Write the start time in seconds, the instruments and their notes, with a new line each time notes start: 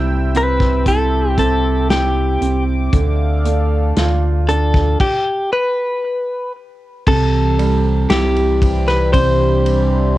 Already playing: sub bass C2, grand piano C3 G3 E4, analog synth pad C4 E5 G5 E6
0.34 grand piano C4, clean electric guitar B4, closed hi-hat
0.60 kick, snare
0.86 grand piano E4, clean electric guitar A4, analog synth pad D6, kick, closed hi-hat
1.38 grand piano C4, clean electric guitar A4, kick, closed hi-hat
1.90 grand piano E4, clean electric guitar G4, snare, closed hi-hat
2.41 sub bass C2, grand piano C4, closed hi-hat
2.93 sub bass D2, grand piano D3, analog synth pad A4 D5 F5, kick, closed hi-hat
3.45 grand piano A3, closed hi-hat
3.96 sub bass D2, grand piano F4, snare, closed hi-hat
4.48 grand piano D4, clean electric guitar A4, closed hi-hat
4.74 kick, snare
5.00 clean electric guitar G4, kick, crash
5.53 clean electric guitar B4
7.07 sub bass C2, grand piano C3, analog synth pad E3 G3 C4 G4, clean electric guitar A4, kick, crash
7.59 grand piano G3, ride
8.10 sub bass C2, grand piano E4, clean electric guitar G4, snare, ride
8.36 ride
8.62 kick, ride
8.88 clean electric guitar B4, snare, ride
9.13 grand piano C3, analog synth pad D4, clean electric guitar C5, kick, ride
9.66 ride